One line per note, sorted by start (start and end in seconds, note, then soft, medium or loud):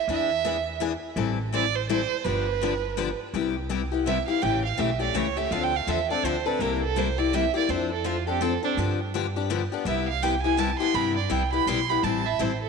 0.08 0.94 E2 medium
0.08 0.29 E3 medium
0.08 0.29 B3 medium
0.08 0.29 D4 medium
0.08 0.29 G#4 medium
0.13 0.79 E5 loud
0.45 0.55 E3 medium
0.45 0.55 B3 medium
0.45 0.55 D4 medium
0.45 0.56 G#4 medium
0.80 0.91 E3 medium
0.80 0.91 B3 medium
0.80 0.91 D4 medium
0.80 0.92 G#4 medium
1.16 2.03 A1 medium
1.16 1.37 E3 medium
1.16 1.37 G3 medium
1.16 1.37 C4 medium
1.16 1.37 E4 medium
1.16 1.37 A4 medium
1.52 1.63 E3 medium
1.52 1.64 G3 medium
1.52 1.64 C4 medium
1.52 1.64 E4 medium
1.52 1.64 A4 medium
1.52 1.77 D5 medium
1.76 1.89 C5 medium
1.89 2.00 E3 medium
1.89 2.00 G3 medium
1.89 2.00 C4 medium
1.89 2.00 E4 medium
1.89 2.00 A4 medium
1.89 2.26 C5 medium
2.24 3.12 G1 medium
2.24 2.45 D3 medium
2.24 2.45 F3 medium
2.24 2.46 B3 medium
2.24 2.46 D4 medium
2.24 2.46 G4 medium
2.24 3.19 B4 medium
2.62 2.72 D3 medium
2.62 2.73 F3 medium
2.62 2.73 B3 medium
2.62 2.73 D4 medium
2.62 2.73 G4 medium
2.97 3.08 D3 medium
2.97 3.08 F3 medium
2.97 3.08 B3 medium
2.97 3.09 D4 loud
2.97 3.08 G4 medium
3.34 4.20 C2 medium
3.34 3.54 C3 medium
3.34 3.54 G3 medium
3.34 3.54 B3 medium
3.34 3.55 E4 medium
3.34 3.55 G4 medium
3.70 3.80 C3 medium
3.70 3.81 G3 medium
3.70 3.81 B3 medium
3.70 3.81 E4 medium
3.70 3.81 G4 medium
3.92 4.06 B3 soft
3.92 4.06 E4 soft
3.92 4.05 G4 soft
4.06 4.17 C3 medium
4.06 4.17 G3 medium
4.06 4.17 B3 medium
4.06 4.17 E4 medium
4.06 4.17 G4 loud
4.06 4.26 E5 medium
4.28 4.42 B3 soft
4.28 4.42 E4 soft
4.28 4.41 G4 soft
4.28 4.44 F5 medium
4.42 4.71 A1 medium
4.42 4.62 C#3 medium
4.42 4.62 E3 medium
4.42 4.63 A3 medium
4.42 4.63 C#4 medium
4.42 4.63 G4 medium
4.42 4.64 G5 medium
4.65 4.81 F5 medium
4.77 5.09 B1 medium
4.77 4.89 C#3 medium
4.77 4.89 E3 medium
4.77 4.89 A3 medium
4.77 4.89 C#4 medium
4.77 4.89 G4 medium
4.77 5.01 E5 medium
5.00 5.14 A3 soft
5.00 5.14 C#4 soft
5.00 5.14 G4 medium
5.00 5.17 D5 medium
5.14 5.46 C#2 medium
5.14 5.25 C#3 medium
5.14 5.26 E3 medium
5.14 5.26 A3 medium
5.14 5.26 C#4 medium
5.14 5.26 G4 medium
5.14 5.39 C#5 medium
5.37 5.51 A3 soft
5.37 5.51 C#4 soft
5.37 5.50 G4 medium
5.37 5.53 E5 medium
5.51 5.80 D2 medium
5.51 5.72 D3 medium
5.51 5.72 F3 medium
5.51 5.72 C4 medium
5.51 5.72 D4 medium
5.51 5.72 A4 medium
5.51 5.65 F5 medium
5.63 5.78 G5 medium
5.76 5.92 F5 medium
5.87 6.18 E2 medium
5.87 5.98 D3 medium
5.87 5.98 F3 medium
5.87 5.99 C4 medium
5.87 5.99 D4 medium
5.87 5.99 A4 medium
5.87 6.11 E5 medium
6.10 6.24 C4 soft
6.10 6.24 D4 soft
6.10 6.24 A4 soft
6.10 6.27 D5 medium
6.23 6.54 D2 medium
6.23 6.35 D3 medium
6.23 6.35 F3 medium
6.23 6.35 C4 medium
6.23 6.35 D4 medium
6.23 6.36 A4 medium
6.23 6.47 C5 medium
6.46 6.60 C4 soft
6.46 6.60 D4 medium
6.46 6.59 A4 medium
6.46 6.62 B4 medium
6.59 7.47 C2 medium
6.59 6.81 C3 medium
6.59 6.81 G3 medium
6.59 6.81 A#3 medium
6.59 6.81 E4 medium
6.59 6.81 G4 medium
6.59 6.82 A#4 medium
6.83 7.00 A4 medium
6.96 7.07 C3 medium
6.96 7.07 G3 medium
6.96 7.07 A#3 medium
6.96 7.08 E4 medium
6.96 7.08 G4 medium
6.96 7.20 C5 medium
7.18 7.33 A#3 soft
7.18 7.32 E4 soft
7.18 7.32 G4 soft
7.18 7.36 D5 medium
7.33 7.44 C3 medium
7.33 7.44 G3 medium
7.33 7.44 A#3 medium
7.33 7.44 E4 medium
7.33 7.44 G4 medium
7.33 7.55 E5 medium
7.54 7.69 A#3 soft
7.54 7.68 E4 soft
7.54 7.68 G4 medium
7.54 7.71 D5 medium
7.69 8.56 F2 medium
7.69 7.89 F3 medium
7.69 7.89 C4 medium
7.69 7.90 D4 medium
7.69 7.90 A4 medium
7.69 7.91 C5 medium
7.92 8.07 A4 medium
8.04 8.16 F3 medium
8.04 8.16 C4 medium
8.04 8.16 D4 medium
8.04 8.27 F4 medium
8.04 8.16 A4 medium
8.27 8.40 C4 soft
8.27 8.41 D4 soft
8.27 8.44 G4 medium
8.27 8.41 A4 soft
8.41 8.52 F3 medium
8.41 8.52 C4 medium
8.41 8.52 D4 medium
8.41 8.52 A4 medium
8.41 8.64 A4 medium
8.63 8.78 C4 soft
8.63 8.77 D4 soft
8.63 8.73 D4 medium
8.63 8.77 A4 medium
8.77 9.64 G2 medium
8.77 8.98 D3 medium
8.77 8.98 F3 medium
8.77 8.99 B3 medium
8.77 8.99 D4 medium
8.77 8.99 G4 medium
9.14 9.25 D3 medium
9.14 9.25 F3 medium
9.14 9.25 B3 medium
9.14 9.25 D4 medium
9.14 9.25 G4 medium
9.36 9.49 B3 soft
9.36 9.50 D4 soft
9.36 9.50 G4 soft
9.50 9.61 D3 medium
9.50 9.61 F3 medium
9.50 9.61 B3 loud
9.50 9.61 D4 medium
9.50 9.61 G4 medium
9.72 9.85 B3 medium
9.72 9.86 D4 soft
9.72 9.86 G4 medium
9.85 10.73 C2 loud
9.85 10.06 C3 medium
9.85 10.07 G3 medium
9.85 10.07 B3 medium
9.85 10.07 E4 medium
9.85 10.07 G4 medium
9.85 10.07 E5 medium
10.09 10.24 F5 medium
10.22 10.33 C3 medium
10.22 10.34 G3 medium
10.22 10.34 B3 medium
10.22 10.34 E4 medium
10.22 10.34 G4 medium
10.22 10.42 G5 medium
10.42 10.57 B3 soft
10.42 10.58 E4 soft
10.42 10.58 G4 soft
10.42 10.60 G#5 medium
10.57 10.69 C3 medium
10.57 10.69 G3 medium
10.57 10.70 B3 medium
10.57 10.70 E4 loud
10.57 10.70 G4 loud
10.57 10.78 A5 medium
10.79 10.93 B3 medium
10.79 10.94 E4 medium
10.79 10.93 G4 medium
10.79 10.96 C6 loud
10.94 11.24 G2 medium
10.94 11.15 C3 medium
10.94 11.15 G3 medium
10.94 11.15 B3 medium
10.94 11.16 E4 medium
10.94 11.15 G4 medium
10.94 11.16 B5 medium
11.17 11.33 D5 medium
11.30 11.61 C2 medium
11.30 11.41 C3 medium
11.30 11.41 G3 medium
11.30 11.42 B3 medium
11.30 11.42 E4 medium
11.30 11.42 G4 medium
11.30 11.52 G5 medium
11.53 11.67 B3 soft
11.53 11.67 E4 soft
11.53 11.67 G4 medium
11.53 11.69 B5 loud
11.66 11.98 B1 medium
11.66 11.78 C3 medium
11.66 11.79 G3 medium
11.66 11.79 B3 medium
11.66 11.79 E4 loud
11.66 11.79 G4 loud
11.66 11.91 C6 loud
11.89 12.04 B3 soft
11.89 12.03 E4 soft
11.89 12.03 G4 medium
11.89 12.05 B5 medium
12.03 12.32 A1 medium
12.03 12.24 E3 medium
12.03 12.24 G3 medium
12.03 12.24 C4 medium
12.03 12.24 E4 medium
12.03 12.24 A4 medium
12.03 12.27 A5 medium
12.26 12.43 E5 medium
12.39 12.69 A1 medium
12.39 12.50 E3 medium
12.39 12.50 G3 medium
12.39 12.51 C4 medium
12.39 12.51 E4 medium
12.39 12.51 A4 medium
12.39 12.61 C5 medium
12.62 12.69 A4 medium